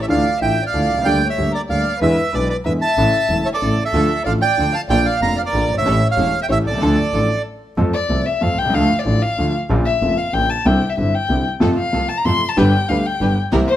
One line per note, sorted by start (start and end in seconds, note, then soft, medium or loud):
0.01 0.05 C#5 medium
0.01 0.06 E5 medium
0.08 0.23 D2 medium
0.08 0.23 D3 medium
0.08 0.22 E3 medium
0.08 0.22 A3 medium
0.08 0.23 D4 medium
0.08 0.23 F4 medium
0.08 0.39 D5 medium
0.08 0.39 F5 medium
0.41 0.55 A1 soft
0.41 0.55 A2 soft
0.41 0.55 E3 soft
0.41 0.55 A3 soft
0.41 0.55 D4 soft
0.41 0.55 F4 soft
0.41 0.63 E5 medium
0.41 0.64 G5 medium
0.65 1.02 D5 medium
0.65 1.07 F5 medium
0.74 0.87 D2 medium
0.74 0.87 D2 soft
0.74 0.87 D3 soft
0.74 0.87 E3 soft
0.74 0.87 A3 soft
0.74 0.87 D4 soft
0.74 0.87 F4 soft
0.90 1.05 C2 soft
0.94 0.98 B1 soft
0.94 1.02 C2 medium
1.01 1.06 C#2 medium
1.01 1.27 D5 medium
1.01 1.28 G5 medium
1.06 1.19 D2 medium
1.06 1.19 D3 medium
1.06 1.19 G3 medium
1.06 1.19 A#3 medium
1.06 1.19 G4 medium
1.28 1.51 C#5 medium
1.28 1.52 E5 medium
1.38 1.51 D2 medium
1.38 1.51 D2 soft
1.38 1.51 D3 soft
1.38 1.51 G3 soft
1.38 1.51 A#3 soft
1.38 1.51 G4 soft
1.52 1.60 A#4 medium
1.52 1.62 D5 medium
1.68 1.83 D2 medium
1.68 1.83 D2 soft
1.68 1.83 D3 medium
1.68 1.83 G3 soft
1.68 1.83 A#3 soft
1.68 1.83 G4 soft
1.68 1.99 D5 medium
1.68 1.99 F5 medium
2.00 2.15 E2 medium
2.00 2.15 D3 medium
2.00 2.15 E3 medium
2.00 2.15 G#3 medium
2.00 2.15 B3 medium
2.00 2.15 E4 medium
2.00 2.31 B4 medium
2.00 2.35 E5 medium
2.32 2.47 B1 medium
2.32 2.47 B2 soft
2.32 2.47 D3 soft
2.32 2.47 G#3 soft
2.32 2.47 B3 soft
2.32 2.47 E4 soft
2.32 2.48 B4 medium
2.32 2.48 D5 medium
2.48 2.56 B4 medium
2.48 2.57 D5 medium
2.64 2.79 E2 medium
2.64 2.79 E2 soft
2.64 2.79 D3 soft
2.64 2.79 E3 soft
2.64 2.79 G#3 soft
2.64 2.79 B3 soft
2.64 2.79 E4 soft
2.64 2.72 B4 medium
2.64 2.73 E5 medium
2.80 3.41 E5 medium
2.80 3.48 A5 medium
2.97 3.11 A1 medium
2.97 3.11 A2 medium
2.97 3.11 C#3 medium
2.97 3.11 E3 medium
2.97 3.11 A3 medium
2.97 3.11 E4 medium
3.30 3.43 E1 soft
3.30 3.43 E2 soft
3.30 3.43 C#3 soft
3.30 3.43 E3 soft
3.30 3.44 A3 soft
3.30 3.43 E4 soft
3.45 3.49 C#5 medium
3.45 3.49 E5 medium
3.53 3.83 A4 medium
3.53 3.84 D5 medium
3.62 3.75 A1 medium
3.62 3.75 A1 soft
3.62 3.75 A2 soft
3.62 3.75 C#3 soft
3.62 3.75 E3 soft
3.62 3.75 A3 soft
3.62 3.75 E4 soft
3.85 4.23 A4 medium
3.85 4.23 E5 medium
3.93 4.07 D2 medium
3.93 4.08 D2 medium
3.93 4.07 D3 medium
3.93 4.07 F3 medium
3.93 4.08 A3 medium
3.93 4.07 D4 medium
3.93 4.07 F4 medium
3.93 4.08 F4 medium
3.93 4.07 A4 medium
4.24 4.39 A1 medium
4.24 4.39 A1 soft
4.24 4.40 A2 soft
4.24 4.39 D3 soft
4.24 4.39 F3 soft
4.24 4.40 A3 soft
4.24 4.39 D4 soft
4.24 4.39 F4 soft
4.24 4.40 F4 soft
4.24 4.40 A4 soft
4.24 4.32 D5 medium
4.24 4.33 F5 medium
4.41 4.71 D5 medium
4.41 4.75 G5 medium
4.58 4.71 D2 soft
4.58 4.71 D2 medium
4.58 4.71 D3 soft
4.58 4.71 F3 soft
4.58 4.71 A3 soft
4.58 4.71 D4 soft
4.58 4.71 F4 soft
4.58 4.71 A4 soft
4.73 4.81 F5 medium
4.73 4.82 A5 medium
4.89 5.03 A#1 medium
4.89 5.04 A#2 medium
4.89 5.03 D3 medium
4.89 5.03 F3 medium
4.89 5.04 A#3 medium
4.89 5.03 D4 medium
4.89 5.03 F4 medium
4.89 5.04 F4 medium
4.89 5.03 A#4 medium
4.89 5.04 D5 medium
4.89 5.06 G5 loud
5.05 5.19 D5 medium
5.05 5.21 F5 medium
5.20 5.35 F1 medium
5.20 5.36 F1 soft
5.20 5.36 F2 soft
5.20 5.35 D3 soft
5.20 5.35 F3 soft
5.20 5.36 A#3 soft
5.20 5.35 D4 soft
5.20 5.35 F4 soft
5.20 5.36 F4 soft
5.20 5.35 A#4 soft
5.20 5.36 F5 medium
5.20 5.38 A#5 medium
5.36 5.40 D5 medium
5.36 5.42 F5 medium
5.45 5.75 A#4 medium
5.45 5.76 D5 medium
5.53 5.67 A#1 soft
5.53 5.67 A#1 medium
5.53 5.67 A#2 medium
5.53 5.67 D3 soft
5.53 5.67 F3 soft
5.53 5.67 A#3 soft
5.53 5.67 D4 soft
5.53 5.67 F4 soft
5.53 5.67 A#4 soft
5.70 5.85 G1 medium
5.74 5.78 F#1 soft
5.74 5.82 G1 medium
5.74 6.07 C#5 medium
5.78 5.86 G#1 medium
5.78 6.08 E5 medium
5.85 5.99 A1 medium
5.85 5.99 A2 medium
5.85 5.99 E3 medium
5.85 5.99 A3 medium
5.85 5.99 C#4 medium
5.85 5.99 G4 medium
5.85 5.99 A4 medium
6.09 6.39 C#5 medium
6.09 6.40 F5 medium
6.17 6.31 E1 medium
6.17 6.31 E2 medium
6.17 6.31 E3 soft
6.17 6.31 A3 soft
6.17 6.31 C#4 soft
6.17 6.31 G4 soft
6.17 6.31 A4 soft
6.42 6.45 E5 medium
6.42 6.46 G5 medium
6.49 6.63 A1 soft
6.49 6.63 A1 medium
6.49 6.63 A2 medium
6.49 6.63 E3 soft
6.49 6.63 A3 soft
6.49 6.63 C#4 soft
6.49 6.63 G4 soft
6.49 6.63 A4 soft
6.49 6.56 C#5 medium
6.49 6.58 E5 medium
6.65 6.73 B1 soft
6.65 6.81 C2 medium
6.65 7.42 A4 medium
6.65 7.42 D5 medium
6.73 6.77 C2 medium
6.78 6.82 C#2 medium
6.78 6.95 D2 medium
6.78 6.95 F3 medium
6.78 6.95 D4 medium
6.78 6.95 F4 medium
6.78 6.95 A4 medium
6.82 6.95 D3 medium
6.82 6.95 A3 medium
6.82 6.95 D4 medium
6.82 6.95 A4 medium
7.13 7.27 A1 medium
7.13 7.27 A1 soft
7.13 7.27 A2 soft
7.13 7.27 F3 soft
7.13 7.27 A3 soft
7.13 7.27 D4 soft
7.13 7.27 F4 soft
7.13 7.27 A4 soft
7.77 7.91 F2 medium
7.77 7.91 F3 medium
7.77 7.91 A3 medium
7.77 7.91 C4 medium
7.77 7.91 A4 medium
7.94 8.28 D5 medium
8.09 8.23 C2 medium
8.09 8.23 C3 medium
8.09 8.23 F3 soft
8.09 8.23 A3 soft
8.09 8.23 C4 soft
8.09 8.23 A4 medium
8.26 8.44 E5 medium
8.41 8.55 F2 medium
8.41 8.55 F3 medium
8.41 8.55 A3 soft
8.41 8.55 C4 soft
8.41 8.55 A4 medium
8.41 8.60 F5 medium
8.58 8.66 B1 soft
8.58 8.73 C2 medium
8.58 8.76 G5 medium
8.65 8.70 C2 medium
8.70 8.74 C#2 medium
8.70 8.87 D2 medium
8.70 8.87 D3 medium
8.70 8.87 F3 medium
8.74 8.87 D2 medium
8.74 8.87 A3 medium
8.74 8.88 F4 medium
8.74 9.01 F5 medium
8.99 9.06 D5 medium
9.05 9.19 A1 medium
9.05 9.19 A2 medium
9.05 9.19 D3 soft
9.05 9.19 F3 soft
9.05 9.19 A3 soft
9.05 9.19 F4 medium
9.05 9.24 D5 medium
9.22 9.54 F5 medium
9.38 9.52 D2 medium
9.38 9.52 D3 medium
9.38 9.52 F3 soft
9.38 9.52 A3 soft
9.38 9.52 F4 medium
9.69 9.83 A#1 medium
9.69 9.84 A#1 loud
9.69 9.83 A#2 medium
9.69 9.83 C#3 medium
9.69 9.83 F3 medium
9.69 9.83 A#3 medium
9.69 9.84 F4 medium
9.86 10.19 E5 medium
10.02 10.15 F1 medium
10.02 10.15 F2 medium
10.02 10.15 C#3 soft
10.02 10.15 F3 soft
10.02 10.15 A#3 soft
10.02 10.15 F4 soft
10.18 10.35 F5 medium
10.33 10.47 A#1 medium
10.33 10.47 A#2 medium
10.33 10.47 C#3 soft
10.33 10.47 F3 soft
10.33 10.47 A#3 soft
10.33 10.47 F4 medium
10.33 10.51 G5 loud
10.50 10.67 A5 medium
10.65 10.79 C2 medium
10.65 10.79 C3 medium
10.65 10.79 D3 medium
10.65 10.79 G3 medium
10.65 10.79 C4 medium
10.65 10.79 E4 medium
10.65 10.91 G5 medium
10.90 10.97 E5 medium
10.97 11.11 G1 medium
10.97 11.11 G2 soft
10.97 11.11 D3 soft
10.97 11.11 G3 soft
10.97 11.11 C4 soft
10.97 11.11 E4 medium
10.97 11.16 E5 medium
11.15 11.46 G5 medium
11.29 11.43 C2 medium
11.29 11.43 C3 soft
11.29 11.43 D3 soft
11.29 11.43 G3 soft
11.29 11.43 C4 soft
11.29 11.43 E4 soft
11.60 11.74 F2 medium
11.60 11.75 F2 medium
11.60 11.74 C3 medium
11.60 11.74 F3 medium
11.60 11.74 A3 medium
11.60 11.75 C4 medium
11.60 11.74 F4 medium
11.60 11.75 F4 medium
11.60 11.75 A4 medium
11.78 12.10 F5 medium
11.93 12.07 C2 medium
11.93 12.07 C3 medium
11.93 12.06 F3 soft
11.93 12.07 A3 soft
11.93 12.07 C4 soft
11.93 12.07 F4 soft
11.93 12.07 A4 soft
12.09 12.19 A5 medium
12.18 12.27 A#5 medium
12.25 12.39 F2 medium
12.25 12.39 C3 soft
12.25 12.39 F3 medium
12.25 12.39 A3 soft
12.25 12.38 C4 soft
12.25 12.39 F4 soft
12.25 12.39 A4 medium
12.25 12.50 C6 loud
12.49 12.59 A5 medium
12.56 12.71 G1 medium
12.56 12.71 G2 medium
12.56 12.70 D3 medium
12.56 12.71 G3 medium
12.56 12.70 B3 medium
12.56 12.70 D4 medium
12.56 12.71 G4 medium
12.56 12.71 B4 medium
12.56 12.90 G5 medium
12.89 13.02 D2 medium
12.89 13.03 D2 medium
12.89 13.03 D3 medium
12.89 13.03 G3 soft
12.89 13.03 B3 soft
12.89 13.03 D4 medium
12.89 13.03 G4 soft
12.89 13.03 G4 medium
12.89 13.03 B4 medium
12.89 13.08 F5 medium
13.06 13.37 G5 medium
13.21 13.34 G1 medium
13.21 13.34 G2 medium
13.21 13.34 D3 soft
13.21 13.34 G3 soft
13.21 13.34 B3 soft
13.21 13.34 D4 medium
13.21 13.34 G4 soft
13.21 13.35 G4 medium
13.21 13.34 B4 medium
13.52 13.66 C2 medium
13.52 13.66 C3 medium
13.52 13.66 E3 medium
13.52 13.66 A#3 medium
13.52 13.66 C4 medium
13.52 13.66 E4 medium
13.52 13.66 G4 medium
13.52 13.66 A#4 medium
13.68 13.77 C5 medium